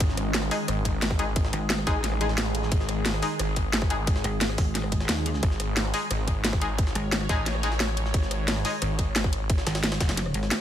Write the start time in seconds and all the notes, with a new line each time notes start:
Already playing: D#3 G#3
0.00 G#1 G#4, kick, closed hi-hat, ride
0.09 snare
0.17 cross-stick, closed hi-hat, ride
0.34 snare, closed hi-hat, ride
0.43 cross-stick
0.51 G#3 D#4 G#4, snare, closed hi-hat, open hi-hat
0.68 G#1, cross-stick, closed hi-hat, ride
0.85 kick, closed hi-hat, ride
1.02 snare, closed hi-hat, ride
1.11 kick, cross-stick
1.19 G#3 D#4 G#4, closed hi-hat, ride
1.36 kick, closed hi-hat, ride
1.45 snare
1.53 G#1, cross-stick, closed hi-hat, ride
1.70 snare, closed hi-hat, ride
1.78 cross-stick
1.87 A1 G#3 D#4 G#4, kick, snare, closed hi-hat, ride
2.04 snare, closed hi-hat, ride
2.12 cross-stick
2.21 G#3 D#4 G#4, closed hi-hat, ride
2.29 snare
2.38 snare, closed hi-hat, ride
2.55 closed hi-hat, ride
2.63 snare
2.72 G#1, kick, closed hi-hat, ride
2.80 snare
2.89 cross-stick, closed hi-hat, ride
3.06 snare, closed hi-hat, ride
3.14 cross-stick
3.23 G#3 D#4 G#4, snare, closed hi-hat, open hi-hat
3.39 G#1, cross-stick, closed hi-hat, ride
3.56 kick, closed hi-hat, ride
3.73 snare, closed hi-hat, ride
3.82 kick, cross-stick
3.90 G#3 D#4 G#4, closed hi-hat, ride
4.07 kick, closed hi-hat, ride
4.16 snare
4.24 G#1, cross-stick, closed hi-hat, ride
4.41 snare, closed hi-hat, ride
4.50 cross-stick
4.58 G#1, kick, snare, closed hi-hat, open hi-hat
4.75 snare, closed hi-hat, ride
4.84 cross-stick
4.92 kick, closed hi-hat, ride
5.00 snare
5.09 D#2, snare, closed hi-hat, ride
5.26 closed hi-hat, ride
5.34 snare
5.43 G#1 C#5, kick, closed hi-hat, ride
5.51 snare
5.60 cross-stick, closed hi-hat, ride
5.77 snare, closed hi-hat, ride
5.85 cross-stick
5.94 G#3 D#4 G#4, snare, closed hi-hat, open hi-hat
6.11 G#1, cross-stick, closed hi-hat, ride
6.28 kick, closed hi-hat, ride
6.45 snare, closed hi-hat, ride
6.53 kick, cross-stick
6.61 G#3 D#4 G#4, closed hi-hat, ride
6.78 kick, closed hi-hat, ride
6.87 snare
6.95 G#1, cross-stick, closed hi-hat, ride
7.12 snare, closed hi-hat, ride
7.21 cross-stick
7.29 A1 G#3 D#4 G#4, kick, snare, closed hi-hat, ride
7.46 snare, closed hi-hat, ride
7.55 cross-stick
7.63 G#3 D#4 G#4, closed hi-hat, ride
7.72 snare
7.80 snare, closed hi-hat, ride
7.97 closed hi-hat, ride
8.06 snare
8.14 G#1, kick, closed hi-hat, ride
8.23 snare
8.31 cross-stick, closed hi-hat, ride
8.48 snare, closed hi-hat, ride
8.56 cross-stick
8.65 G#3 D#4 G#4, snare, closed hi-hat, open hi-hat
8.82 G#1, cross-stick, closed hi-hat, ride
8.99 kick, closed hi-hat, ride
9.16 snare, closed hi-hat, ride
9.24 kick, cross-stick
9.33 closed hi-hat, ride
9.50 kick, closed hi-hat, ride
9.58 snare
9.67 G#1, cross-stick, snare, closed hi-hat, ride
9.75 snare, ride
9.83 snare, closed hi-hat, ride
9.92 cross-stick, snare, ride
10.00 F#1, kick, snare, closed hi-hat, ride
10.09 snare, ride
10.17 snare, closed hi-hat, ride
10.26 cross-stick
10.34 G#1, closed hi-hat, ride
10.43 snare
10.51 snare, closed hi-hat, ride